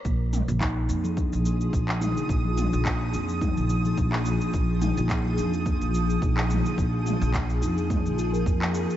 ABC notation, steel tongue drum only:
X:1
M:4/4
L:1/16
Q:"Swing 16ths" 1/4=107
K:Bbmix
V:1 name="Steel tongue drum"
B,4 E2 B, F, D2 B,4 E2 | B, F, D2 B,4 E2 B, F, D2 B,2- | B,2 E2 B, F, D2 B,4 E2 B, F, | D2 B,4 E2 B, F, F B z2 F z |]